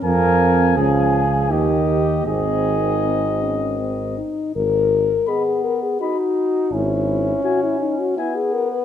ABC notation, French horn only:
X:1
M:3/4
L:1/16
Q:1/4=82
K:Ab
V:1 name="French horn"
C4 D2 z2 B,4 | C4 C2 D2 C2 E2 | [K:G#m] A4 G2 A G F4 | E4 F E D F E G A B |]